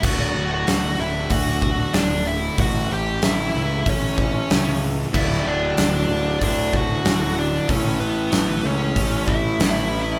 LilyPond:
<<
  \new Staff \with { instrumentName = "Lead electric guitar" } { \time 4/4 \key d \major \tempo 4 = 94 <fis' fis''>8. <fis' fis''>8. <e' e''>8 <fis' fis''>4 <d' d''>8 <e' e''>8 | <fis' fis''>8 <g' g''>8 <e' e''>4 <cis' cis''>4. r8 | <e' e''>8 <d' d''>4. <d' d''>8 <fis' fis''>4 <d' d''>8 | <cis' cis''>8 <b b'>4 <cis' cis''>4 <e' e''>4. | }
  \new Staff \with { instrumentName = "Distorted electric guitar" } { \clef bass \time 4/4 \key d \major <d, a, d>4. <d, a, d>2~ <d, a, d>8 | <a, e a>4. <a, e a>2~ <a, e a>8 | <d, a, d>4. <d, a, d>2~ <d, a, d>8 | <a, e a>4. <a, e a>2~ <a, e a>8 | }
  \new Staff \with { instrumentName = "Overdriven electric guitar" } { \clef bass \time 4/4 \key d \major r1 | r1 | <d, a, d>2 <d, a, d>2 | <a, e a>2 <a, e a>2 | }
  \new Staff \with { instrumentName = "Picked electric bass" } { \clef bass \time 4/4 \key d \major d,,8 d,,8 d,,8 d,,8 d,4 d,,4 | a,,8 a,,8 a,,8 cis,8 a,,4 cis,4 | d,,8 d,,8 d,,8 d,,8 d,4 d,,4 | a,,8 a,,8 a,,8 cis,8 a,,4 a,,4 | }
  \new DrumStaff \with { instrumentName = "Drums" } \drummode { \time 4/4 <cymc bd>16 sn8. <hho sn>4 <hho bd>8 bd8 <hho sn>4 | <hho bd>4 <hho sn>4 <hho bd>8 bd8 <hho sn>4 | <cymc bd>16 sn8. <hho sn>4 <hho bd>8 bd8 <hho sn>4 | <hho bd>4 <hho sn>4 <hho bd>8 bd8 <hho sn>4 | }
>>